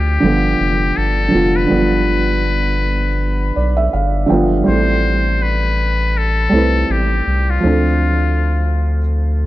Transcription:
Already playing: sub bass D2, felt piano D3 F3 A3 C4 F4, muted trumpet G4
0.20 sub bass G1, felt piano D3 F3 G3
0.26 felt piano B3 F4
0.60 sub bass F1
0.97 sub bass G1, muted trumpet A4
1.28 felt piano D3 F3 G3
1.34 sub bass F1, felt piano B3 F4
1.56 muted trumpet B4
1.66 felt piano D3 F3 G3
1.71 sub bass G1, felt piano B3 F4
3.56 sub bass B1, felt piano D5
3.77 felt piano E5
3.93 sub bass G1, felt piano F5
4.26 felt piano D3 F3 G3 G5
4.31 sub bass G1, felt piano B3 F4
4.64 sub bass A1, felt piano G3 A3 C4, muted trumpet C5
4.69 felt piano E4 A4
5.42 muted trumpet B4
6.17 muted trumpet A4
6.50 sub bass C2, felt piano G3 A3 C4
6.55 felt piano E4 B4
6.90 sub bass A1, muted trumpet G4
7.27 sub bass C2
7.50 muted trumpet F4
7.60 sub bass D2, felt piano F3 A3 C4
7.65 felt piano D4 A4

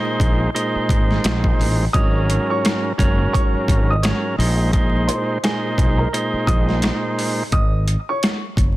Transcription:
Already playing: tonewheel organ A#2 G#3 D#4 C5
0.20 fretless electric bass A#1, kick, closed hi-hat
0.55 tonewheel organ A#2 G#3 D#4 C5, closed hi-hat
0.75 muted fretless electric bass stroke
0.89 fretless electric bass G#1, kick, closed hi-hat
1.11 snare
1.24 fretless electric bass A#1, cross-stick, snare, closed hi-hat
1.44 kick
1.59 fretless electric bass A1, open hi-hat
1.93 fretless electric bass G#1, tonewheel organ G#2 F#3 C#4 A#4, upright piano D#5 D#6, kick, closed hi-hat
2.30 closed hi-hat
2.50 upright piano C#5 C#6
2.65 cross-stick, snare, closed hi-hat
2.98 fretless electric bass F#1, tonewheel organ G#2 F#3 C#4 A#4, kick, closed hi-hat
3.33 upright piano C#5 C#6, kick, closed hi-hat
3.54 muted fretless electric bass stroke
3.68 fretless electric bass G#1, kick, closed hi-hat
3.90 upright piano D#5 D#6
4.03 tonewheel organ G#2 F#3 C#4 A#4, cross-stick, snare, closed hi-hat
4.38 fretless electric bass A#1, tonewheel organ A#2 G#3 D#4 C5, open hi-hat
4.73 tonewheel organ A#2 G#3 D#4 C5, kick, closed hi-hat
5.07 upright piano C5 C6, closed hi-hat
5.43 tonewheel organ A#2 G#3 D#4 C5, upright piano G#4 G#5, cross-stick, snare, closed hi-hat
5.78 fretless electric bass B1, kick, closed hi-hat
5.98 upright piano A#4 A#5
6.13 tonewheel organ A#2 G#3 D#4 C5, closed hi-hat
6.33 muted fretless electric bass stroke
6.47 fretless electric bass A#1, upright piano D#5 D#6, kick, closed hi-hat
6.69 snare
6.82 cross-stick, snare, closed hi-hat
7.19 open hi-hat
7.52 fretless electric bass G#1, upright piano D#5 D#6, kick, closed hi-hat
7.88 closed hi-hat
8.09 upright piano C#5 C#6
8.23 cross-stick, snare, closed hi-hat
8.57 fretless electric bass F#1, kick, closed hi-hat

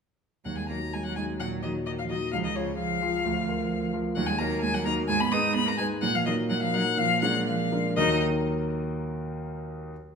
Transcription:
0.44 grand piano D#2, cello F#3, violin F#5
0.57 cello G#3, violin G#5
0.69 grand piano F#3 D#4 F#4, cello A#3, violin A#5
0.93 cello G#3, violin G#5
1.05 cello F#3, violin F#5
1.16 grand piano F#3 D#4 F#4, cello G#3, violin G#5
1.40 grand piano A#2, cello F#3, violin F#5
1.63 cello D#3, grand piano F#3 D#4 F#4, violin D#5
1.86 cello D#3, violin D#5
1.98 cello F3, violin F5
2.09 cello D#3, grand piano F#3 D#4 F#4, violin D#5
2.32 grand piano C#2, cello F3, violin F5
2.44 cello D#3, violin D#5
2.56 cello C#3, grand piano F3 F4 G#4, violin C#5
2.78 cello F3, violin F5
3.02 grand piano F3 F4 G#4
3.25 grand piano D2
3.48 grand piano F3 F4 A#4
3.93 grand piano F3 F4 A#4
4.16 grand piano D#2, cello F#3, violin F#5
4.27 cello G#3, violin G#5
4.39 grand piano F#3 D#4 A#4, cello A#3, violin A#5
4.62 cello G#3, violin G#5
4.74 cello F#3, violin F#5
4.85 grand piano F#3 D#4 A#4, cello A#3, violin A#5
5.08 grand piano G#2, cello G#3, violin G#5
5.20 cello B3, violin B5
5.32 grand piano G#3 D#4 B4, cello D#4, violin D#6
5.54 cello B3, violin B5
5.66 cello A#3, violin A#5
5.78 cello G#3, grand piano G#3 D#4 B4, violin G#5
6.02 grand piano A#2, cello F#3, violin F#5
6.14 cello F3, violin F5
6.26 cello D#3, grand piano F#3 D#4 A#4, violin D#5
6.49 cello F#3, violin F#5
6.62 cello F3, violin F5
6.73 grand piano F#3 D#4 A#4, cello F#3, violin F#5
6.97 grand piano A#2, cello F3, violin F5
7.22 cello F#3, grand piano G#3 D4 A#4, violin F#5
7.46 cello F3, violin F5
7.72 grand piano G#3 D4 A#4
7.96 grand piano D#2 D#3 F#3 D#4 A#4 D#5, cello D#4, violin D#5

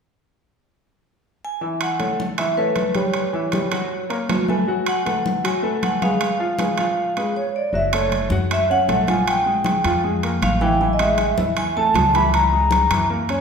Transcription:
1.45 vibraphone G#5
1.61 grand piano E3 E4 E5, high conga
1.81 vibraphone F#5, high conga, high timbale
1.99 grand piano A3 A4 C#5, high conga, high timbale
2.20 high conga
2.38 grand piano E3 E4 E5, vibraphone E5, high conga, high timbale
2.57 grand piano A3 A4 C#5, vibraphone B4, high conga
2.76 high conga, high timbale
2.95 grand piano G3 G4 B4, vibraphone C#5, high conga, high timbale
3.14 high conga, high timbale
3.33 grand piano E3 E4 E5, high conga
3.52 grand piano G3 G4 B4, high conga, high timbale
3.72 grand piano F#3 F#4 F#5, high conga, high timbale
3.92 high conga
4.10 grand piano A#3 A#4 C#5, high conga, high timbale
4.29 high conga, high timbale, low timbale
4.48 grand piano A3 A4 B4, vibraphone G#5, high conga
4.68 grand piano F#3 F#4 F#5, high conga
4.86 vibraphone F#5, high conga, high timbale
5.05 grand piano A3 A4 B4, high conga, high timbale
5.26 high conga
5.44 grand piano F#3 F#4 F#5, vibraphone G#5, high conga, high timbale
5.62 grand piano A3 A4 B4, high conga
5.83 vibraphone F#5, high conga, high timbale
6.02 grand piano G#3 G#4 B4, vibraphone F5, high conga, high timbale
6.21 high conga, high timbale
6.40 grand piano F3 F4 F5, high conga
6.59 grand piano G#3 G#4 B4, high conga, high timbale
6.78 grand piano F3 F4 F5, high conga, high timbale
6.97 high conga
7.17 grand piano G#3 G#4 B4, high conga, high timbale
7.36 flute C#5, vibraphone C#5
7.54 flute D5, vibraphone D5
7.73 upright bass F#1, grand piano F#3 F#4, flute E5, vibraphone E5, high conga
7.93 grand piano A3 A4, flute C#5, vibraphone C#5, high conga, high timbale
8.11 high conga, high timbale
8.30 upright bass F#2, grand piano F#4 F#5, high conga
8.50 flute E5, vibraphone E5, high conga, high timbale
8.70 grand piano C#4 C#5, flute F#5, vibraphone F#5, high conga
8.88 upright bass A#1, grand piano A3 A4, high conga, high timbale
9.08 grand piano F3 F4, vibraphone G#5, flute G#5, high conga, high timbale
9.27 vibraphone G5, flute G5, high conga, high timbale
9.46 grand piano G#3 G#4, high conga
9.64 high conga, high timbale
9.84 upright bass F2, grand piano F3 F4, high conga, high timbale
10.03 grand piano G#3 G#4, high conga
10.23 grand piano A#3 A#4, high conga, high timbale
10.42 upright bass A1, flute F5, vibraphone F5, high conga, high timbale
10.61 grand piano E3 E4, flute G5, vibraphone G5, high conga
10.80 grand piano E3 E4, flute G#5, vibraphone G#5, high conga
10.92 flute D#5, vibraphone D#5
10.99 grand piano G#3 G#4, flute E5, vibraphone E5, high conga, high timbale
11.18 high conga, high timbale
11.38 upright bass E2, grand piano E4 E5, high conga
11.56 flute G#5, vibraphone G#5, high conga, high timbale
11.75 grand piano A3 A4, flute A5, vibraphone A5, high conga
11.94 upright bass C#2, grand piano G#3 G#4, high conga, high timbale, low timbale
12.14 grand piano E3 E4, flute B5, vibraphone B5, high conga, high timbale
12.32 flute A#5, vibraphone A#5, high conga, high timbale
12.52 grand piano G#3 G#4, high conga
12.71 high conga, high timbale
12.90 upright bass F#2, grand piano E3 E4, high conga, high timbale
13.09 grand piano A#3 A#4, high conga
13.29 grand piano C#4 C#5, high conga, high timbale

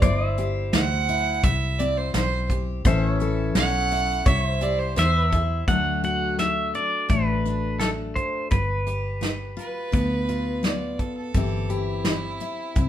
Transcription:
Already playing: fiddle D5
0.02 fingered electric bass G1, steel-string acoustic guitar G2 E4, pedal steel guitar C5 D5, kick, closed hi-hat
0.28 pedal steel guitar E5
0.38 steel-string acoustic guitar G4, closed hi-hat
0.73 fingered electric bass D2, steel-string acoustic guitar E3, fiddle F#5, snare, closed hi-hat
1.08 steel-string acoustic guitar E4, closed hi-hat
1.43 fingered electric bass C2, steel-string acoustic guitar G2, fiddle E5, kick, closed hi-hat
1.79 steel-string acoustic guitar C4, fiddle D5, closed hi-hat
1.97 fiddle C5
2.14 fingered electric bass B1, steel-string acoustic guitar E3, fiddle C5, snare, closed hi-hat
2.50 steel-string acoustic guitar G4, kick, closed hi-hat
2.85 fingered electric bass A1, steel-string acoustic guitar A2 E3 C#4 E4 A4, pedal steel guitar C5 E5, kick, closed hi-hat
3.07 pedal steel guitar C#5
3.20 steel-string acoustic guitar A4, closed hi-hat
3.55 fingered electric bass B1, steel-string acoustic guitar E3, fiddle F#5, snare, closed hi-hat
3.91 steel-string acoustic guitar E4, closed hi-hat
4.26 fingered electric bass C2, steel-string acoustic guitar C3 E4, pedal steel guitar C#5 E5, fiddle E5, kick, closed hi-hat
4.46 pedal steel guitar C5
4.61 steel-string acoustic guitar G4, fiddle D5, closed hi-hat
4.79 fiddle C5
4.96 fingered electric bass E2, steel-string acoustic guitar E3, fiddle C5, pedal steel guitar E5, snare, closed hi-hat
5.32 steel-string acoustic guitar E4, kick, closed hi-hat
5.68 fingered electric bass D2, steel-string acoustic guitar D3 F#3 A3 D4 F#4, pedal steel guitar F#5, kick, closed hi-hat
6.03 steel-string acoustic guitar F#4, pedal steel guitar F#5, closed hi-hat
6.39 steel-string acoustic guitar F#3, pedal steel guitar E5, snare, closed hi-hat
6.74 steel-string acoustic guitar D4, pedal steel guitar D5, closed hi-hat
7.09 fingered electric bass A1, steel-string acoustic guitar A2 A3, pedal steel guitar B4, kick, closed hi-hat
7.45 steel-string acoustic guitar D4, closed hi-hat
7.80 steel-string acoustic guitar F#3 A3, pedal steel guitar A4, snare, closed hi-hat
8.16 pedal steel guitar C5, kick, closed hi-hat
8.51 fingered electric bass G1, steel-string acoustic guitar G2, pedal steel guitar B4, kick, closed hi-hat
8.87 steel-string acoustic guitar G4, closed hi-hat
9.21 steel-string acoustic guitar G3, snare, closed hi-hat
9.57 steel-string acoustic guitar F4, fiddle B4, closed hi-hat
9.92 fingered electric bass D2, steel-string acoustic guitar D3 B3, kick, closed hi-hat
10.29 steel-string acoustic guitar F4, closed hi-hat
10.63 steel-string acoustic guitar G3 B3, fiddle D5, snare, closed hi-hat
10.99 fiddle A4, kick, closed hi-hat
11.17 fiddle A4
11.34 fingered electric bass G1, steel-string acoustic guitar G2 E3 C4 E4 G4, kick, closed hi-hat
11.69 fiddle E4, steel-string acoustic guitar G4, closed hi-hat
12.05 steel-string acoustic guitar E3, snare, closed hi-hat
12.40 steel-string acoustic guitar E4, closed hi-hat
12.76 fingered electric bass C2, steel-string acoustic guitar G2 C4, kick, closed hi-hat

